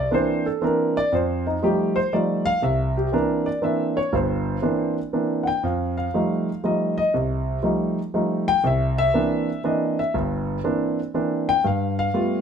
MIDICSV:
0, 0, Header, 1, 2, 480
1, 0, Start_track
1, 0, Tempo, 500835
1, 1071, Time_signature, 3, 2, 24, 8
1, 11895, End_track
2, 0, Start_track
2, 0, Title_t, "Grand piano"
2, 0, Program_c, 0, 0
2, 0, Note_on_c, 0, 74, 79
2, 108, Note_on_c, 0, 52, 53
2, 108, Note_on_c, 0, 58, 46
2, 110, Note_on_c, 0, 60, 53
2, 114, Note_on_c, 0, 62, 62
2, 117, Note_off_c, 0, 74, 0
2, 135, Note_on_c, 0, 72, 73
2, 431, Note_off_c, 0, 72, 0
2, 442, Note_on_c, 0, 69, 73
2, 443, Note_off_c, 0, 52, 0
2, 443, Note_off_c, 0, 58, 0
2, 444, Note_off_c, 0, 60, 0
2, 446, Note_off_c, 0, 62, 0
2, 590, Note_on_c, 0, 52, 49
2, 593, Note_off_c, 0, 69, 0
2, 593, Note_on_c, 0, 58, 43
2, 593, Note_on_c, 0, 60, 50
2, 596, Note_on_c, 0, 62, 53
2, 613, Note_on_c, 0, 70, 67
2, 910, Note_off_c, 0, 70, 0
2, 924, Note_off_c, 0, 52, 0
2, 925, Note_off_c, 0, 60, 0
2, 926, Note_off_c, 0, 58, 0
2, 927, Note_off_c, 0, 62, 0
2, 931, Note_on_c, 0, 74, 92
2, 1076, Note_on_c, 0, 41, 72
2, 1078, Note_off_c, 0, 74, 0
2, 1101, Note_on_c, 0, 72, 59
2, 1394, Note_off_c, 0, 72, 0
2, 1406, Note_on_c, 0, 63, 57
2, 1490, Note_off_c, 0, 41, 0
2, 1550, Note_off_c, 0, 63, 0
2, 1558, Note_on_c, 0, 53, 51
2, 1561, Note_on_c, 0, 55, 50
2, 1564, Note_on_c, 0, 63, 54
2, 1566, Note_on_c, 0, 57, 48
2, 1571, Note_on_c, 0, 67, 68
2, 1869, Note_off_c, 0, 67, 0
2, 1875, Note_on_c, 0, 72, 82
2, 1888, Note_off_c, 0, 53, 0
2, 1890, Note_off_c, 0, 55, 0
2, 1891, Note_off_c, 0, 63, 0
2, 1892, Note_off_c, 0, 57, 0
2, 2030, Note_off_c, 0, 72, 0
2, 2041, Note_on_c, 0, 53, 56
2, 2042, Note_on_c, 0, 74, 66
2, 2043, Note_on_c, 0, 55, 45
2, 2046, Note_on_c, 0, 57, 44
2, 2047, Note_on_c, 0, 63, 49
2, 2345, Note_off_c, 0, 74, 0
2, 2353, Note_on_c, 0, 77, 107
2, 2370, Note_off_c, 0, 53, 0
2, 2371, Note_off_c, 0, 55, 0
2, 2372, Note_off_c, 0, 57, 0
2, 2373, Note_off_c, 0, 63, 0
2, 2508, Note_off_c, 0, 77, 0
2, 2515, Note_on_c, 0, 36, 68
2, 2525, Note_on_c, 0, 76, 70
2, 2826, Note_off_c, 0, 76, 0
2, 2849, Note_on_c, 0, 67, 55
2, 2929, Note_off_c, 0, 36, 0
2, 2993, Note_on_c, 0, 52, 58
2, 2997, Note_off_c, 0, 67, 0
2, 2998, Note_on_c, 0, 58, 44
2, 3001, Note_on_c, 0, 60, 46
2, 3003, Note_on_c, 0, 70, 65
2, 3005, Note_on_c, 0, 62, 64
2, 3305, Note_off_c, 0, 70, 0
2, 3317, Note_on_c, 0, 74, 69
2, 3325, Note_off_c, 0, 52, 0
2, 3328, Note_off_c, 0, 58, 0
2, 3329, Note_off_c, 0, 60, 0
2, 3332, Note_off_c, 0, 62, 0
2, 3468, Note_on_c, 0, 52, 49
2, 3471, Note_off_c, 0, 74, 0
2, 3471, Note_on_c, 0, 60, 46
2, 3472, Note_on_c, 0, 58, 47
2, 3477, Note_on_c, 0, 62, 54
2, 3488, Note_on_c, 0, 76, 64
2, 3787, Note_off_c, 0, 76, 0
2, 3803, Note_off_c, 0, 52, 0
2, 3803, Note_on_c, 0, 73, 79
2, 3804, Note_off_c, 0, 60, 0
2, 3805, Note_off_c, 0, 58, 0
2, 3808, Note_off_c, 0, 62, 0
2, 3953, Note_off_c, 0, 73, 0
2, 3955, Note_on_c, 0, 43, 66
2, 3956, Note_on_c, 0, 31, 68
2, 3977, Note_on_c, 0, 72, 62
2, 4370, Note_off_c, 0, 31, 0
2, 4370, Note_off_c, 0, 43, 0
2, 4430, Note_on_c, 0, 52, 55
2, 4434, Note_on_c, 0, 58, 47
2, 4436, Note_on_c, 0, 60, 52
2, 4437, Note_on_c, 0, 62, 56
2, 4723, Note_off_c, 0, 72, 0
2, 4764, Note_off_c, 0, 52, 0
2, 4766, Note_off_c, 0, 58, 0
2, 4767, Note_off_c, 0, 60, 0
2, 4767, Note_off_c, 0, 62, 0
2, 4917, Note_on_c, 0, 52, 47
2, 4920, Note_on_c, 0, 60, 45
2, 4921, Note_on_c, 0, 58, 45
2, 4924, Note_on_c, 0, 62, 49
2, 5208, Note_on_c, 0, 78, 58
2, 5228, Note_off_c, 0, 78, 0
2, 5246, Note_on_c, 0, 79, 81
2, 5248, Note_off_c, 0, 52, 0
2, 5249, Note_off_c, 0, 60, 0
2, 5250, Note_off_c, 0, 58, 0
2, 5251, Note_off_c, 0, 62, 0
2, 5395, Note_off_c, 0, 79, 0
2, 5399, Note_on_c, 0, 41, 66
2, 5415, Note_on_c, 0, 77, 63
2, 5711, Note_off_c, 0, 77, 0
2, 5726, Note_on_c, 0, 77, 71
2, 5811, Note_off_c, 0, 41, 0
2, 5886, Note_on_c, 0, 53, 51
2, 5888, Note_on_c, 0, 55, 45
2, 5891, Note_on_c, 0, 57, 51
2, 5892, Note_on_c, 0, 63, 55
2, 6212, Note_off_c, 0, 53, 0
2, 6213, Note_off_c, 0, 55, 0
2, 6215, Note_off_c, 0, 57, 0
2, 6215, Note_off_c, 0, 63, 0
2, 6321, Note_off_c, 0, 77, 0
2, 6360, Note_on_c, 0, 53, 51
2, 6363, Note_on_c, 0, 55, 50
2, 6364, Note_on_c, 0, 57, 46
2, 6367, Note_on_c, 0, 63, 49
2, 6378, Note_on_c, 0, 75, 66
2, 6672, Note_off_c, 0, 75, 0
2, 6686, Note_on_c, 0, 75, 89
2, 6689, Note_off_c, 0, 53, 0
2, 6691, Note_off_c, 0, 55, 0
2, 6691, Note_off_c, 0, 57, 0
2, 6692, Note_off_c, 0, 63, 0
2, 6835, Note_off_c, 0, 75, 0
2, 6844, Note_on_c, 0, 36, 63
2, 7254, Note_off_c, 0, 36, 0
2, 7310, Note_on_c, 0, 53, 54
2, 7313, Note_on_c, 0, 55, 50
2, 7317, Note_on_c, 0, 57, 44
2, 7321, Note_on_c, 0, 63, 55
2, 7644, Note_off_c, 0, 53, 0
2, 7645, Note_off_c, 0, 55, 0
2, 7648, Note_off_c, 0, 57, 0
2, 7649, Note_off_c, 0, 63, 0
2, 7801, Note_on_c, 0, 53, 51
2, 7803, Note_on_c, 0, 55, 49
2, 7803, Note_on_c, 0, 57, 44
2, 7807, Note_on_c, 0, 63, 55
2, 8127, Note_on_c, 0, 79, 103
2, 8129, Note_off_c, 0, 53, 0
2, 8130, Note_off_c, 0, 55, 0
2, 8130, Note_off_c, 0, 57, 0
2, 8132, Note_off_c, 0, 63, 0
2, 8275, Note_off_c, 0, 79, 0
2, 8279, Note_on_c, 0, 36, 66
2, 8307, Note_on_c, 0, 76, 76
2, 8596, Note_off_c, 0, 76, 0
2, 8611, Note_on_c, 0, 76, 99
2, 8691, Note_off_c, 0, 36, 0
2, 8759, Note_on_c, 0, 52, 56
2, 8759, Note_on_c, 0, 58, 52
2, 8764, Note_on_c, 0, 60, 47
2, 8769, Note_on_c, 0, 62, 60
2, 9088, Note_off_c, 0, 52, 0
2, 9088, Note_off_c, 0, 58, 0
2, 9091, Note_off_c, 0, 60, 0
2, 9093, Note_off_c, 0, 62, 0
2, 9203, Note_off_c, 0, 76, 0
2, 9239, Note_on_c, 0, 52, 51
2, 9241, Note_on_c, 0, 58, 45
2, 9244, Note_on_c, 0, 60, 44
2, 9246, Note_on_c, 0, 62, 56
2, 9254, Note_on_c, 0, 75, 62
2, 9550, Note_off_c, 0, 75, 0
2, 9568, Note_off_c, 0, 52, 0
2, 9569, Note_off_c, 0, 58, 0
2, 9570, Note_off_c, 0, 60, 0
2, 9571, Note_off_c, 0, 62, 0
2, 9577, Note_on_c, 0, 76, 77
2, 9720, Note_off_c, 0, 76, 0
2, 9722, Note_on_c, 0, 31, 64
2, 9722, Note_on_c, 0, 43, 64
2, 10132, Note_off_c, 0, 31, 0
2, 10132, Note_off_c, 0, 43, 0
2, 10197, Note_on_c, 0, 52, 48
2, 10201, Note_on_c, 0, 58, 47
2, 10201, Note_on_c, 0, 60, 51
2, 10204, Note_on_c, 0, 62, 60
2, 10526, Note_off_c, 0, 52, 0
2, 10528, Note_off_c, 0, 58, 0
2, 10528, Note_off_c, 0, 60, 0
2, 10530, Note_off_c, 0, 62, 0
2, 10680, Note_on_c, 0, 52, 50
2, 10682, Note_on_c, 0, 60, 48
2, 10683, Note_on_c, 0, 58, 45
2, 10686, Note_on_c, 0, 62, 56
2, 11008, Note_off_c, 0, 52, 0
2, 11008, Note_off_c, 0, 60, 0
2, 11009, Note_off_c, 0, 58, 0
2, 11010, Note_on_c, 0, 79, 98
2, 11011, Note_off_c, 0, 62, 0
2, 11156, Note_off_c, 0, 79, 0
2, 11158, Note_on_c, 0, 43, 61
2, 11182, Note_on_c, 0, 77, 70
2, 11473, Note_off_c, 0, 77, 0
2, 11491, Note_on_c, 0, 77, 88
2, 11569, Note_off_c, 0, 43, 0
2, 11635, Note_on_c, 0, 55, 50
2, 11635, Note_on_c, 0, 57, 49
2, 11638, Note_on_c, 0, 59, 45
2, 11641, Note_on_c, 0, 65, 61
2, 11895, Note_off_c, 0, 55, 0
2, 11895, Note_off_c, 0, 57, 0
2, 11895, Note_off_c, 0, 59, 0
2, 11895, Note_off_c, 0, 65, 0
2, 11895, Note_off_c, 0, 77, 0
2, 11895, End_track
0, 0, End_of_file